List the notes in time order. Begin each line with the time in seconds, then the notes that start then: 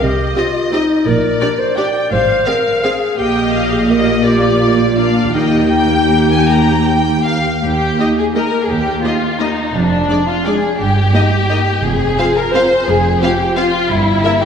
0.01 C2 C3 G4 D#5
0.36 C4 F4 G4 D#5
0.72 C4 D#4 G4 D#5
1.06 A#1 A#2 A#4 D5
1.41 D4 G4 D5
1.59 C5
1.77 D4 G4 D5 G5
2.12 G#1 G#2 C5 F5
2.46 C4 G#4 A#4 F5
2.83 C4 G#4 F5
3.17 A#1 A#2 A#3 G4 D#5 G5
3.52 F5
3.72 G#4
3.89 A#3 G4 A#4 D#5
4.24 A#3 F4 G4 D5
4.58 D5
4.78 F4
4.96 A#3 D4 F4 D5 F5
5.34 D#2 A#3 D#4 G4 D#5 G5
5.72 G5
6.32 G#5
6.50 A#5
6.88 G5
7.27 F5
7.63 D#2 G4
7.99 A#3 D#4 G4 D#5
8.18 G#4
8.35 A#3 D#4 G4 A#4 D#5
8.63 G#4
8.69 D#2 G4
9.03 A#3 D#4 F4 G4 D#5
9.40 A#3 D#4 G4 D#5
9.75 F1 F2 D4
10.09 G#3 D4 G#4 D5
10.28 F4
10.46 G#3 D4 G#4 D5
10.80 G1 G2 G4
11.14 A#3 D#4 G4 D#5
11.50 A#3 D#4 G4 D#5
11.83 F1 F2 G#4
12.18 C4 F4 C5 F5
12.36 A#4
12.54 C4 F4 C5 F5
12.88 F1 F2 G#4
13.21 C4 F4 G4 C5 F5
13.56 C4 F4 C5 F5
13.90 G1 G2 E4
14.23 A#3 E4 A#4 E5
14.41 G4